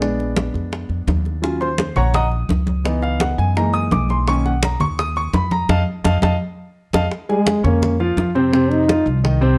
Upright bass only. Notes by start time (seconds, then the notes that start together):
Already playing: A#1
0.54 F2
0.89 F2
1.07 D#2
1.96 A#1
2.49 C#2
3.38 F#2
3.91 B1
4.80 D#2
5.33 F2
5.69 F2
6.05 F2
6.23 F2
6.94 F2
7.64 F2
8.17 F2
9.06 C2